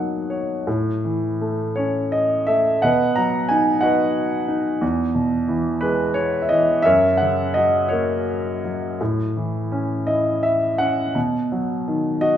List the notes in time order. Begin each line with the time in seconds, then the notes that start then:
Already playing: B2 F#3 A#3 D#4 F#4 D#5 F#5
0.30 C#5
0.67 A2
1.04 E3
1.41 A3
1.76 C#4 C#5
2.12 D#5
2.47 A3 E5
2.82 B2 B4 D#5 F#5
3.16 F#3 A#5
3.49 D#4 G#5
3.81 F#4 B4 D#5 F#5
4.48 D#4
4.81 E2
5.15 B2
5.48 E3
5.81 G#3 B4
6.14 C#5
6.42 E5
6.49 E3 D#5
6.82 F#2 A#4 C#5 E5
7.17 F#5
7.22 C#3
7.54 F#3 D#5
7.89 A#3 F#4 A#4 C#5
8.64 F#3
9.01 A2
9.36 E3
9.72 C#4
10.07 E4 D#5
10.43 E5
10.78 C#4 F#5
11.15 B2
11.52 F#3
11.88 D#3
12.21 F#4 D#5